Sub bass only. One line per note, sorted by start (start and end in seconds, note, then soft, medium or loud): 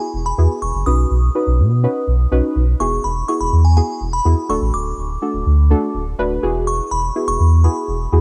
0.14 0.33 E1 medium
0.38 0.47 E2 loud
0.62 0.72 E1 loud
0.74 0.84 F#1 medium
0.86 1.05 B1 loud
1.11 1.29 B1 loud
1.47 1.60 B1 medium
1.59 1.87 B2 loud
2.07 2.26 B1 loud
2.32 2.41 B1 medium
2.56 2.75 B1 medium
2.80 2.99 E1 loud
3.04 3.23 E1 loud
3.41 3.50 E1 medium
3.53 3.81 E2 loud
4.01 4.20 E1 medium
4.25 4.35 E2 medium
4.49 4.59 D1 loud
4.61 4.71 A1 medium
4.74 4.92 D1 loud
4.98 5.17 D1 loud
5.34 5.43 D1 medium
5.46 5.74 D2 medium
5.94 6.13 D1 loud
6.19 6.37 D1 loud
6.43 6.80 E1 loud
6.91 7.10 E1 loud
7.28 7.37 E1 medium
7.40 7.68 E2 loud
7.88 8.07 E1 medium
8.12 8.21 E2 loud